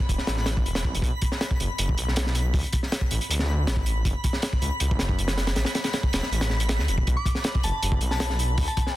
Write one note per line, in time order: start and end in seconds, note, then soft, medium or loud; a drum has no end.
0.00 7.06 B5 medium
0.09 0.18 E1 medium
0.09 kick medium
0.09 closed hi-hat medium
0.18 snare soft
0.27 0.64 A1 loud
0.27 snare loud
0.27 closed hi-hat medium
0.37 snare soft
0.46 snare loud
0.46 closed hi-hat medium
0.57 kick medium
0.65 0.86 E1 medium
0.65 closed hi-hat medium
0.75 snare medium
0.75 closed hi-hat medium
0.84 0.96 C2 medium
0.84 kick medium
0.94 1.02 E1 medium
0.94 closed hi-hat medium
1.02 1.11 B1 loud
1.02 kick loud
1.02 closed hi-hat medium
1.22 kick medium
1.22 closed hi-hat medium
1.32 snare soft
1.41 snare loud
1.41 closed hi-hat medium
1.51 kick loud
1.60 1.69 F#1 medium
1.60 closed hi-hat medium
1.78 1.96 F#1 medium
1.78 closed hi-hat medium
1.89 kick medium
1.98 2.53 B1 loud
1.98 closed hi-hat medium
2.08 snare soft
2.16 snare loud
2.16 closed hi-hat medium
2.27 snare medium
2.35 closed hi-hat medium
2.54 2.63 D2 loud
2.54 kick loud
2.54 open hi-hat medium
2.64 closed hi-hat soft
2.73 kick loud
2.73 closed hi-hat medium
2.83 snare soft
2.92 snare loud
2.92 closed hi-hat medium
3.01 kick medium
3.11 3.20 A1 medium
3.11 closed hi-hat medium
3.21 closed hi-hat soft
3.29 3.69 D2 loud
3.29 closed hi-hat medium
3.39 snare soft
3.67 4.04 A1 medium
3.67 snare loud
3.67 closed hi-hat medium
3.76 kick medium
3.86 closed hi-hat medium
4.05 4.14 F#1 loud
4.05 kick medium
4.05 closed hi-hat medium
4.24 kick loud
4.24 closed hi-hat medium
4.33 snare soft
4.42 snare loud
4.42 closed hi-hat medium
4.53 kick loud
4.62 4.70 C#2 medium
4.62 closed hi-hat medium
4.80 4.98 C#2 medium
4.80 closed hi-hat medium
4.91 kick loud
4.99 5.55 F#1 loud
4.99 snare medium
4.99 closed hi-hat medium
5.09 kick medium
5.19 closed hi-hat medium
5.28 snare loud
5.28 closed hi-hat medium
5.38 snare loud
5.38 closed hi-hat medium
5.47 snare loud
5.47 closed hi-hat medium
5.56 5.65 A1 loud
5.56 snare medium
5.56 closed hi-hat medium
5.65 snare loud
5.65 closed hi-hat medium
5.75 snare loud
5.75 closed hi-hat medium
5.84 snare loud
5.84 closed hi-hat medium
5.93 snare loud
5.93 closed hi-hat medium
6.03 kick loud
6.13 6.21 E1 medium
6.13 snare loud
6.13 closed hi-hat medium
6.23 snare medium
6.31 6.50 A1 loud
6.31 closed hi-hat medium
6.41 snare loud
6.41 closed hi-hat medium
6.50 6.80 A1 loud
6.50 snare medium
6.60 closed hi-hat medium
6.69 snare loud
6.69 closed hi-hat medium
6.79 6.90 D2 medium
6.79 snare medium
6.88 7.05 E1 medium
6.88 closed hi-hat medium
6.98 kick medium
7.07 7.16 B1 loud
7.07 8.96 B5 medium
7.07 kick loud
7.07 closed hi-hat medium
7.17 7.39 D6 medium
7.26 kick medium
7.26 closed hi-hat medium
7.35 snare soft
7.44 snare loud
7.44 closed hi-hat medium
7.55 kick loud
7.63 7.72 F#1 medium
7.63 7.92 A5 medium
7.63 closed hi-hat medium
7.83 8.00 F#1 medium
7.83 closed hi-hat medium
7.92 kick loud
8.01 8.57 B1 loud
8.01 closed hi-hat medium
8.11 8.34 A5 medium
8.11 snare soft
8.20 snare loud
8.20 closed hi-hat medium
8.30 snare medium
8.39 closed hi-hat medium
8.58 8.67 D2 loud
8.58 kick loud
8.58 open hi-hat medium
8.67 8.96 A5 medium
8.67 closed hi-hat soft
8.77 kick loud
8.77 closed hi-hat medium
8.87 snare soft